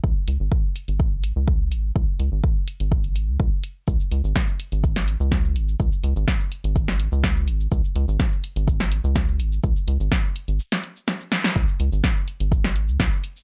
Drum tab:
HH |--x---xx--x---x-|--x---xx-xx---x-|--x---xx--x---x-|--x---xx-xx---x-|
SH |----------------|----------------|xx-xxx-xxx-xxx-x|xx-xxx-xxx-xxx-x|
SD |----------------|----------------|----o----o--o---|----o----o--o---|
BD |o---o---o---o---|o---o---o---o---|o---o---o---o---|o---o---o---o---|

HH |--x---xx--x---x-|--x---xx-xx---x-|--x---xx--x---x-|
SH |xx-xxx-xxx-xxx-x|xx-xxx-xxx-xxx-x|xx-xxx-xxx-xxx-x|
SD |----o----o--o---|----o----o--o-oo|----o----o--o---|
BD |o---o---o---o---|o---o-----------|o---o---o---o---|